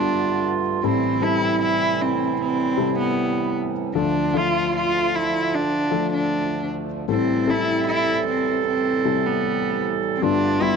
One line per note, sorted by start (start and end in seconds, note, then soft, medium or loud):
0.00 0.80 G1 medium
0.00 0.80 G2 medium
0.00 0.80 D3 medium
0.00 0.83 G3 medium
0.00 0.80 A3 medium
0.00 0.80 B3 medium
0.00 0.86 B3 medium
0.00 0.42 D4 medium
0.00 0.86 D4 medium
0.00 0.86 F4 medium
0.00 0.86 G4 medium
0.00 0.61 A4 medium
0.83 3.92 A1 medium
0.83 3.93 A2 medium
0.83 3.92 A2 medium
0.83 3.93 C3 medium
0.83 3.93 E3 medium
0.83 1.15 G3 medium
0.83 3.93 G3 medium
0.83 1.24 C4 medium
0.83 1.15 C4 medium
0.83 1.15 E4 medium
0.83 3.69 E4 medium
0.83 1.15 A4 medium
1.21 2.47 G3 medium
1.21 2.47 C4 medium
1.21 2.48 E4 medium
1.21 1.62 E4 medium
1.21 2.48 A4 medium
1.62 2.03 E4 medium
2.01 2.40 C4 medium
2.41 2.95 C4 medium
2.77 3.72 C3 medium
2.77 3.72 G3 medium
2.77 3.72 E4 medium
2.77 3.72 A4 medium
2.99 3.53 B3 medium
3.95 7.05 D2 medium
3.95 7.06 D2 medium
3.95 7.04 D3 medium
3.95 7.06 D3 medium
3.95 4.27 F3 medium
3.95 7.06 F3 medium
3.95 4.27 A3 medium
3.95 7.06 A3 medium
3.95 4.27 D4 medium
3.95 4.38 D4 medium
3.95 6.66 F4 medium
3.95 4.27 A4 medium
4.34 5.60 F3 medium
4.34 5.60 A3 medium
4.34 5.60 D4 medium
4.34 4.75 F4 medium
4.34 5.60 A4 medium
4.76 5.17 F4 medium
5.15 5.56 E4 medium
5.54 6.12 D4 medium
5.91 6.86 F3 medium
5.91 6.86 A3 medium
5.91 6.86 D4 medium
5.91 6.86 A4 medium
6.13 6.67 D4 medium
7.08 10.18 A1 medium
7.08 10.17 A2 medium
7.08 10.19 A2 medium
7.08 10.19 C3 medium
7.08 10.19 E3 medium
7.08 7.40 G3 medium
7.08 10.19 G3 medium
7.08 7.40 C4 medium
7.08 7.51 C4 medium
7.08 7.40 E4 medium
7.08 7.40 A4 medium
7.08 10.25 A4 loud
7.47 8.73 G3 medium
7.47 8.73 C4 medium
7.47 8.73 E4 medium
7.47 7.87 E4 medium
7.47 8.73 A4 medium
7.88 8.24 E4 medium
8.28 8.63 C4 medium
8.68 9.28 C4 medium
9.05 9.99 C3 medium
9.05 9.99 G3 medium
9.05 9.99 E4 medium
9.05 9.99 A4 medium
9.26 9.84 B3 medium
10.16 10.25 C4 medium
10.22 10.76 G1 medium
10.22 10.76 G2 medium
10.22 10.76 D3 medium
10.22 10.53 G3 medium
10.22 10.76 A3 medium
10.22 10.76 B3 medium
10.22 10.53 B3 medium
10.22 10.54 D4 medium
10.22 10.63 D4 medium
10.22 10.76 F4 medium
10.22 10.54 A4 medium
10.61 10.76 G3 medium
10.61 10.76 B3 medium
10.61 10.76 D4 medium
10.61 10.76 E4 medium
10.61 10.76 G4 medium